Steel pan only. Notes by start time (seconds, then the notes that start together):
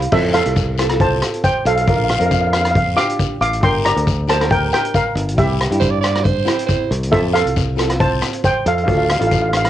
0.12 A4 E5
0.34 A4 F5
1.01 C5 A5
1.44 C5 G5
1.67 A4 F5
1.76 F5
1.82 F5
1.89 F5
1.96 F5
2.04 F5
2.11 F5
2.19 F5
2.26 F5
2.34 F5
2.41 F5
2.47 F5
2.53 F5
2.61 F5
2.71 F5
2.77 F5
2.96 F5 D6
3.41 F5 D6
3.63 G5 C6
3.85 D5 A#5
4.29 C5 A5
4.51 A#4 G5
4.73 A#4 G5
4.95 A#4 F5
5.38 G4 E5
7.12 A4 E5
7.34 A4 F5
8.00 C5 A5
8.44 C5 G5
8.67 A4 F5
8.75 F5
8.84 F5
8.90 F5
8.98 F5
9.05 F5
9.12 F5
9.20 F5
9.27 F5
9.35 F5
9.42 F5
9.49 F5
9.57 F5
9.65 F5